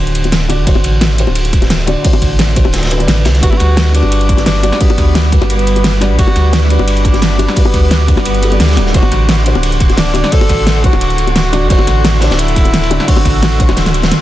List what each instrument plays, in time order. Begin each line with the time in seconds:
Already playing: sub bass D1, felt piano D3 D4 F#4 C5 D5
0.07 closed hi-hat
0.15 closed hi-hat, ride
0.24 closed hi-hat, high bongo
0.32 snare, closed hi-hat, ride
0.49 felt piano D3 D4 F#4 D5, closed hi-hat, ride, high bongo
0.59 sub bass F#1
0.65 sub bass D1, felt piano D3 D4 F#4 C5, kick, closed hi-hat, ride
0.75 high bongo
0.84 sub bass A1, closed hi-hat, ride
1.01 snare, closed hi-hat, ride, high bongo
1.10 snare
1.17 felt piano D3 D4 F#4 C5, closed hi-hat, ride
1.27 sub bass D1, high bongo
1.35 closed hi-hat, ride
1.45 closed hi-hat
1.53 kick, closed hi-hat, ride
1.62 snare, closed hi-hat, high bongo
1.70 snare, closed hi-hat, ride
1.79 snare
1.86 felt piano D3 D4 F#4 D5, closed hi-hat, ride, high bongo
2.03 felt piano D3 D4 F#4 C5, kick, closed hi-hat, open hi-hat
2.13 high bongo
2.22 sub bass A1, kick, closed hi-hat, ride
2.39 snare, closed hi-hat, ride, high bongo
2.48 ride
2.55 felt piano D3 D4 F#4 C5, kick, closed hi-hat, ride
2.65 sub bass D1, high bongo
2.73 snare, closed hi-hat, ride
2.78 snare, ride
2.83 snare, closed hi-hat, ride
2.86 snare, ride
2.90 felt piano D3 D4 F#4 B4, closed hi-hat, ride
2.98 felt piano D3 D4 F#4 D5, closed hi-hat, high bongo
3.08 sub bass A1, snare, closed hi-hat, ride
3.25 sub bass C2, snare, closed hi-hat, ride, high bongo
3.34 snare, closed hi-hat
3.41 sub bass G1, felt piano G3 D4 F#4 B4, ambient pad G3 F#5 B5 D6, tenor saxophone F#4, kick, closed hi-hat, ride
3.50 tenor saxophone E4, high bongo
3.57 sub bass D2, tenor saxophone F#4, snare, closed hi-hat, ride
3.77 snare, closed hi-hat, ride, high bongo
3.87 snare
3.92 felt piano G3 D4 F#4 B4, tenor saxophone D4, closed hi-hat, ride
4.03 sub bass G1, high bongo
4.12 closed hi-hat, ride
4.21 closed hi-hat
4.29 kick, closed hi-hat, ride
4.37 snare, closed hi-hat, high bongo
4.46 tenor saxophone D4, snare, closed hi-hat, ride
4.55 snare
4.62 felt piano G3 D4 F#4 D5, closed hi-hat, ride, high bongo
4.72 snare
4.79 felt piano G3 D4 F#4 B4, tenor saxophone B3, kick, closed hi-hat, open hi-hat
4.90 high bongo
4.98 sub bass D2, kick, snare, closed hi-hat, ride
5.15 snare, closed hi-hat, ride, high bongo
5.24 ride
5.31 felt piano G3 D4 F#4 B4, kick, closed hi-hat, ride
5.41 sub bass G1, snare, high bongo
5.50 tenor saxophone B3, closed hi-hat, ride
5.59 closed hi-hat
5.67 closed hi-hat, ride
5.76 closed hi-hat, high bongo
5.84 snare, closed hi-hat, ride
6.00 felt piano G3 D4 F#4 D5, snare, closed hi-hat, ride, high bongo
6.10 sub bass B1
6.17 sub bass G1, felt piano G3 D4 F#4 B4, tenor saxophone F#4, kick, closed hi-hat, ride
6.27 high bongo
6.36 sub bass D2, snare, closed hi-hat, ride
6.53 snare, closed hi-hat, ride, high bongo
6.63 tenor saxophone E4, snare
6.68 felt piano G3 D4 F#4 B4, tenor saxophone D4, closed hi-hat, ride
6.79 sub bass G1, high bongo
6.88 closed hi-hat, ride
6.97 closed hi-hat
7.05 kick, closed hi-hat, ride
7.14 snare, closed hi-hat, high bongo
7.22 tenor saxophone D4, snare, closed hi-hat, ride
7.31 snare
7.38 felt piano G3 D4 F#4 D5, closed hi-hat, ride, high bongo
7.48 snare
7.55 felt piano G3 D4 F#4 B4, tenor saxophone B3, kick, closed hi-hat, open hi-hat
7.65 high bongo
7.74 sub bass D2, kick, snare, closed hi-hat, ride
7.91 snare, closed hi-hat, ride, high bongo
8.00 ride
8.07 felt piano G3 D4 F#4 B4, kick, closed hi-hat, ride
8.17 sub bass G1, snare, high bongo
8.25 tenor saxophone B3, closed hi-hat, ride
8.35 closed hi-hat
8.42 felt piano G3 D4 F#4 A4, closed hi-hat, ride
8.50 felt piano G3 D4 F#4 D5, closed hi-hat, high bongo
8.60 sub bass D2, snare, closed hi-hat, ride
8.64 snare, ride
8.69 snare, ride
8.72 snare, ride
8.77 sub bass D1, snare, closed hi-hat, ride, high bongo
8.87 snare
8.92 sub bass D1, felt piano D3 D4 F#4 C5, tenor saxophone F#4, ambient pad A4 C6, kick, closed hi-hat, ride
9.03 high bongo
9.12 sub bass A1, snare, closed hi-hat, ride
9.29 snare, closed hi-hat, ride, high bongo
9.38 snare
9.44 felt piano D3 D4 F#4 C5, closed hi-hat, ride
9.55 sub bass D1, high bongo
9.63 closed hi-hat, ride
9.72 closed hi-hat
9.80 kick, closed hi-hat, ride
9.89 snare, closed hi-hat, high bongo
9.97 tenor saxophone D4, snare, closed hi-hat, ride
10.07 snare
10.14 felt piano D3 D4 F#4 D5, closed hi-hat, ride, high bongo
10.24 snare
10.30 felt piano D3 D4 F#4 C5, tenor saxophone A4, kick, closed hi-hat, open hi-hat
10.41 high bongo
10.49 sub bass A1, kick, snare, closed hi-hat, ride
10.66 snare, closed hi-hat, ride, high bongo
10.76 ride
10.82 felt piano D3 D4 F#4 C5, tenor saxophone F#4, kick, closed hi-hat, ride
10.93 sub bass D1, snare, high bongo
11.01 closed hi-hat, ride
11.10 closed hi-hat
11.18 closed hi-hat, ride
11.27 closed hi-hat, high bongo
11.36 tenor saxophone F#4, snare, closed hi-hat, ride
11.52 felt piano D3 D4 F#4 D5, snare, closed hi-hat, ride, high bongo
11.62 sub bass F#1
11.68 sub bass D1, felt piano D3 D4 F#4 C5, tenor saxophone F#4, ambient pad E6, kick, closed hi-hat, ride
11.79 high bongo
11.87 sub bass A1, snare, closed hi-hat, ride
12.04 snare, closed hi-hat, ride, high bongo
12.14 snare
12.20 felt piano D3 D4 F#4 C5, tenor saxophone D4, snare, closed hi-hat, ride
12.31 sub bass D1, snare, ride, high bongo
12.38 tenor saxophone E4, closed hi-hat, ride
12.48 closed hi-hat
12.56 kick, closed hi-hat, ride
12.65 closed hi-hat, high bongo
12.73 snare, closed hi-hat, ride
12.83 ride
12.90 felt piano D3 D4 F#4 D5, closed hi-hat, high bongo
13.00 snare, ride
13.06 felt piano D3 D4 F#4 C5, tenor saxophone F#4, kick, closed hi-hat, open hi-hat
13.16 high bongo
13.25 sub bass A1, kick, snare, closed hi-hat, ride
13.43 snare, closed hi-hat, ride, high bongo
13.52 ride
13.58 felt piano D3 D4 F#4 C5, kick, closed hi-hat, ride
13.69 sub bass D1, snare, high bongo
13.77 snare, closed hi-hat, ride
13.86 snare, closed hi-hat, ride
13.94 closed hi-hat, ride
14.02 snare, closed hi-hat, ride, high bongo
14.11 snare, closed hi-hat, ride